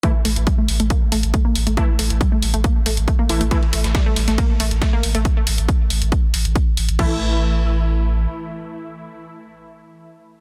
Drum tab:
CC |----------------|----------------|----------------|----------------|
RD |----------------|----------------|xxx-x-x-x-x-x-x-|----------------|
HH |x-oxx-oxx-oxx-ox|x-oxx-oxx-oxx-ox|x-oxx-oxx-oxx-ox|x-oxx-oxx-oxx-ox|
SD |----------------|----------------|---oo-oo----o---|----------------|
BD |o---o---o---o---|o---o---o---o---|o---o---o---o---|o---o---o---o---|

CC |x---------------|----------------|
RD |----------------|----------------|
HH |----------------|----------------|
SD |----------------|----------------|
BD |o---------------|----------------|